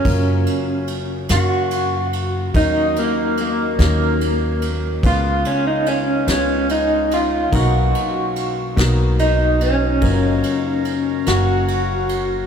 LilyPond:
<<
  \new Staff \with { instrumentName = "Harmonium" } { \time 6/8 \key fis \major \tempo 4. = 48 r2. | r2. | r2. | r2. |
<cis'' eis'' ais''>2. | }
  \new Staff \with { instrumentName = "Clean electric guitar" } { \time 6/8 \key fis \major cis'4 r8 fis'4. | dis'8 ais8 ais8 ais4 r8 | eis'8 cis'16 dis'16 cis'8 cis'8 dis'8 eis'8 | fis'2 dis'8 cis'8~ |
cis'4. fis'4. | }
  \new Staff \with { instrumentName = "Grand piano" } { \time 6/8 \key fis \major <fis ais cis' eis' ais'>4~ <fis ais cis' eis' ais'>16 r16 <fis ais cis' ais' eis''>4~ <fis ais cis' ais' eis''>16 r16 | <fis ais cis' dis' ais'>4~ <fis ais cis' dis' ais'>16 r16 <fis ais cis' dis' cis''>4~ <fis ais cis' dis' cis''>16 r16 | <gis b cis' eis' b'>4~ <gis b cis' eis' b'>16 r16 <gis b cis' eis' b'>4~ <gis b cis' eis' b'>16 r16 | <fis ais b dis' ais'>4~ <fis ais b dis' ais'>16 r16 <fis ais b dis' ais'>4~ <fis ais b dis' ais'>16 r16 |
<fis ais cis' eis' ais'>4~ <fis ais cis' eis' ais'>16 r16 <fis ais cis' ais' eis''>4~ <fis ais cis' ais' eis''>16 r16 | }
  \new Staff \with { instrumentName = "Grand piano" } { \clef bass \time 6/8 \key fis \major <fis,, fis,>2. | <dis, dis>2. | <cis, cis>2. | <b,, b,>2. |
<fis,, fis,>2. | }
  \new Staff \with { instrumentName = "Upright bass" } { \clef bass \time 6/8 \key fis \major fis,8 r4 fis,4. | dis,8 r4 dis,4. | cis,8 r4 cis,4. | b,,8 r4 b,,4. |
fis,,8 r4 fis,,4. | }
  \new DrumStaff \with { instrumentName = "Drums" } \drummode { \time 6/8 <cymc bd>8 cymr8 cymr8 <cymr sn>8 cymr8 cymr8 | <bd cymr>8 cymr8 cymr8 <bd cymr sn>8 cymr8 cymr8 | <bd cymr>8 cymr8 cymr8 <cymr sn>8 cymr8 cymr8 | <bd cymr>8 cymr8 cymr8 <bd cymr sn>8 cymr8 cymr8 |
<bd cymr>8 cymr8 cymr8 <cymr sn>8 cymr8 cymr8 | }
>>